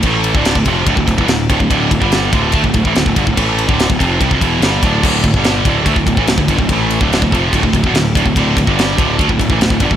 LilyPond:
<<
  \new Staff \with { instrumentName = "Distorted electric guitar" } { \clef bass \time 4/4 \key d \minor \tempo 4 = 144 <a, e a>8. <d, a, d>8 <d, a,>16 <f, c f>8 <d, a,>16 <d, a,>16 <d, a,>16 <e, b,>16 <d, a,>8 <d, a,>16 <d, a,>16 | <d, a, d>8 <d, a,>16 <g, d g>8. <d, a, d>8 <d a>16 <d, a,>16 <d, a,>16 <a, e>16 <d, a,>16 <d, a,>16 <g, d>16 <d, a,>16 | <a, e a>8. <d, a, d>8 <d, a,>16 <f, c f>8 <c g>16 <f, c>16 <e, b, e>8 <g, d g>8 <d, a, d>8 | <d, a, d>8 <d, a,>16 <g, d g>8. <d, a, d>8 <d a>16 <d, a,>16 <d, a,>16 <a, e>16 <d, a,>16 <d, a,>16 <g, d>16 <d, a,>16 |
<a, e a>8. <d, a, d>8 <d, a,>16 <f, c f>8 <d, a,>16 <d, a,>16 <d, a,>16 <e, b,>16 <d, a,>8 <d, a,>16 <d, a,>16 | <d, a, d>8 <d, a,>16 <g, d g>8. <d, a, d>8 <d a>16 <d, a,>16 <d, a,>16 <a, e>16 <d, a,>16 <d, a,>16 <g, d>16 <d, a,>16 | }
  \new Staff \with { instrumentName = "Picked electric bass" } { \clef bass \time 4/4 \key d \minor a,,8. d,,8 d,,16 f,,8 d,,16 d,,16 d,,16 e,,16 d,,8 d,,16 d,,16 | d,,8 d,,16 g,,8. d,,8 d,16 d,,16 d,,16 a,,16 d,,16 d,,16 g,,16 d,,16 | a,,8. d,,8 d,,16 f,,8 c,16 f,,16 e,,8 g,,8 d,,8 | d,,8 d,,16 g,,8. d,,8 d,16 d,,16 d,,16 a,,16 d,,16 d,,16 g,,16 d,,16 |
a,,8. d,,8 d,,16 f,,8 d,,16 d,,16 d,,16 e,,16 d,,8 d,,16 d,,16 | d,,8 d,,16 g,,8. d,,8 d,16 d,,16 d,,16 a,,16 d,,16 d,,16 g,,16 d,,16 | }
  \new DrumStaff \with { instrumentName = "Drums" } \drummode { \time 4/4 <bd cymr>8 cymr16 bd16 <cymr sn>16 bd16 <bd cymr>8 <bd cymr>16 bd16 <bd cymr>16 bd16 <cymr sn>8 <bd cymr>16 bd16 | <bd cymr>8 <bd cymr>16 bd16 <cymr sn>8 <bd cymr>8 <bd cymr>16 bd16 <bd cymr>16 bd16 <cymr sn>16 bd16 <bd cymr>16 bd16 | <bd cymr>8 cymr16 bd16 <cymr sn>16 bd16 <bd cymr>8 <bd cymr>16 bd16 <bd cymr>8 <cymr sn>8 <bd cymr>8 | <cymc bd>8 <bd cymr>16 bd16 <cymr sn>8 <bd cymr>8 <bd cymr>16 bd16 <bd cymr>16 bd16 <cymr sn>16 bd16 <bd cymr>16 bd16 |
<bd cymr>8 cymr16 bd16 <cymr sn>16 bd16 <bd cymr>8 <bd cymr>16 bd16 <bd cymr>16 bd16 <cymr sn>8 <bd cymr>16 bd16 | <bd cymr>8 <bd cymr>16 bd16 <cymr sn>8 <bd cymr>8 <bd cymr>16 bd16 <bd cymr>16 bd16 <cymr sn>16 bd16 <bd cymr>16 bd16 | }
>>